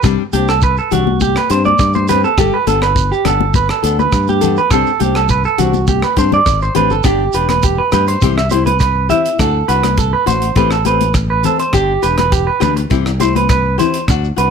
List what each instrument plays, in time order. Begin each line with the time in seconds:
0.03 fingered electric bass C2, nylon-string guitar G3 C4 D4 G4, muted clean electric guitar stroke, kick, cross-stick, shekere
0.33 fingered electric bass C2, nylon-string guitar C4 D4 G4, clean electric guitar G4, closed hi-hat, high conga, shekere
0.48 clean electric guitar A4, cross-stick, shekere
0.62 clean electric guitar B4, kick, shekere
0.77 clean electric guitar A4, shekere
0.91 fingered electric bass C2, nylon-string guitar D4 G4, clean electric guitar F#4, closed hi-hat, low conga, shekere
1.07 high conga
1.21 clean electric guitar G4, kick, high conga, shekere
1.36 clean electric guitar B4, cross-stick, shekere
1.50 fingered electric bass G2, nylon-string guitar C4 D4 G4, clean electric guitar C5, closed hi-hat, shekere
1.65 clean electric guitar D5, high conga, shekere
1.78 fingered electric bass G2, kick, cross-stick, shekere
1.94 clean electric guitar C5, high conga, shekere
2.08 nylon-string guitar C4 D4 G4, clean electric guitar B4, closed hi-hat, low conga, shekere
2.24 clean electric guitar A4, shekere
2.38 fingered electric bass G1, nylon-string guitar G3 A4, clean electric guitar G4, muted nylon-string guitar stroke, kick, cross-stick, shekere
2.54 clean electric guitar B4
2.67 fingered electric bass G1, nylon-string guitar B3 D4 A4, clean electric guitar A4, closed hi-hat, high conga, shekere
2.82 clean electric guitar B4, cross-stick, shekere
2.96 kick, shekere
3.12 clean electric guitar G4, shekere
3.25 fingered electric bass G1, nylon-string guitar B3 D4, clean electric guitar A4, cross-stick, closed hi-hat, low conga, shekere
3.41 high conga
3.54 clean electric guitar B4, kick, high conga, shekere
3.69 clean electric guitar A4, cross-stick, shekere
3.83 fingered electric bass D2, nylon-string guitar B3 D4 A4, closed hi-hat, shekere
3.99 clean electric guitar B4, high conga, shekere
4.12 fingered electric bass G2, kick, cross-stick, shekere
4.28 clean electric guitar G4, high conga, shekere
4.41 nylon-string guitar B3 D4 A4, closed hi-hat, low conga, shekere
4.57 clean electric guitar B4, shekere
4.71 fingered electric bass C2, nylon-string guitar G3 C4 D4 G4, clean electric guitar A4, kick, cross-stick, shekere
4.86 shekere
5.00 fingered electric bass C2, nylon-string guitar C4 D4 G4, clean electric guitar G4, closed hi-hat, high conga, shekere
5.15 clean electric guitar A4, cross-stick, shekere
5.29 clean electric guitar B4, kick, shekere
5.44 clean electric guitar A4, shekere
5.58 fingered electric bass C2, nylon-string guitar C4 D4 G4, clean electric guitar F#4, closed hi-hat, low conga, shekere
5.74 high conga, shekere
5.88 clean electric guitar G4, kick, high conga, shekere
6.02 clean electric guitar B4, cross-stick, shekere
6.17 fingered electric bass G2, nylon-string guitar C4 D4 G4, clean electric guitar C5, kick, closed hi-hat, shekere
6.32 clean electric guitar D5, high conga, low conga, shekere
6.46 fingered electric bass G#1, kick, cross-stick, shekere
6.62 clean electric guitar C5, shekere
6.75 fingered electric bass A1, nylon-string guitar C4 D4 G4, clean electric guitar B4, closed hi-hat, low conga, shekere
6.90 fingered electric bass G1, clean electric guitar A4, shekere
7.04 fingered electric bass G1, nylon-string guitar B3 D4 G4, clean electric guitar G4, kick, cross-stick, closed hi-hat, shekere
7.33 fingered electric bass E1, nylon-string guitar D4 G4, clean electric guitar B4, closed hi-hat, shekere
7.49 clean electric guitar B4, cross-stick, closed hi-hat, high conga
7.63 clean electric guitar G4, kick, closed hi-hat, shekere
7.78 clean electric guitar B4
7.92 fingered electric bass G2, nylon-string guitar G4, clean electric guitar B4, cross-stick, closed hi-hat, high conga, low conga, shekere
8.07 clean electric guitar C5, closed hi-hat, shekere
8.21 fingered electric bass C2, nylon-string guitar E3 C4 E4 G4, kick, closed hi-hat, shekere
8.37 clean electric guitar E5, cross-stick
8.50 nylon-string guitar C4 E4 G4, clean electric guitar C5, closed hi-hat, high conga, shekere
8.66 clean electric guitar B4, closed hi-hat, high conga, shekere
8.80 clean electric guitar B4, kick, cross-stick, closed hi-hat, shekere
9.09 nylon-string guitar C4 E4 G4, clean electric guitar E5, closed hi-hat, low conga, shekere
9.26 closed hi-hat, shekere
9.38 fingered electric bass D2, nylon-string guitar A3 D4 F#4, clean electric guitar A4, kick, cross-stick, closed hi-hat, shekere
9.68 fingered electric bass C2, nylon-string guitar D4 F#4, clean electric guitar B4, closed hi-hat, shekere
9.83 cross-stick, closed hi-hat, high conga
9.97 clean electric guitar A4, kick, closed hi-hat, shekere
10.13 clean electric guitar B4
10.26 fingered electric bass A1, nylon-string guitar F#4, clean electric guitar C5, closed hi-hat, high conga, low conga, shekere
10.42 closed hi-hat, shekere
10.55 fingered electric bass A1, nylon-string guitar E3 A3 C4 G4, clean electric guitar B4, kick, closed hi-hat, shekere
10.71 clean electric guitar A4, cross-stick, shekere
10.85 nylon-string guitar A3 C4 G4, clean electric guitar B4, closed hi-hat, high conga, shekere
11.01 closed hi-hat, high conga, shekere
11.14 muted clean electric guitar stroke, kick, cross-stick, closed hi-hat, shekere
11.30 clean electric guitar B4
11.43 nylon-string guitar A3 C4, clean electric guitar A4, muted nylon-string guitar stroke, closed hi-hat, low conga, shekere
11.59 clean electric guitar C5, closed hi-hat, shekere
11.73 fingered electric bass G1, nylon-string guitar D4 G4, clean electric guitar G4, muted nylon-string guitar stroke, kick, cross-stick, closed hi-hat, shekere
12.02 fingered electric bass E1, nylon-string guitar D4 G4, clean electric guitar B4, closed hi-hat, shekere
12.18 clean electric guitar B4, cross-stick, closed hi-hat, high conga
12.32 clean electric guitar G4, kick, closed hi-hat, shekere
12.47 clean electric guitar B4
12.60 fingered electric bass D2, nylon-string guitar D4 G4, clean electric guitar B4, cross-stick, closed hi-hat, high conga, low conga, shekere
12.76 muted clean electric guitar stroke, closed hi-hat, shekere
12.90 fingered electric bass C2, nylon-string guitar E3 C4 E4 G4, kick, closed hi-hat, shekere
13.06 cross-stick, shekere
13.20 nylon-string guitar C4 E4 G4, clean electric guitar C5, closed hi-hat, high conga, shekere
13.36 clean electric guitar B4, closed hi-hat, high conga, shekere
13.49 clean electric guitar B4, kick, cross-stick, closed hi-hat, shekere
13.78 nylon-string guitar C4 E4 G4, clean electric guitar C5, closed hi-hat, low conga, shekere
13.94 closed hi-hat, shekere
14.08 fingered electric bass D2, nylon-string guitar D4 F#4, muted clean electric guitar stroke, muted nylon-string guitar stroke, kick, cross-stick, closed hi-hat, shekere
14.24 shekere
14.36 fingered electric bass C2, nylon-string guitar D4 F#4, clean electric guitar B4, closed hi-hat, shekere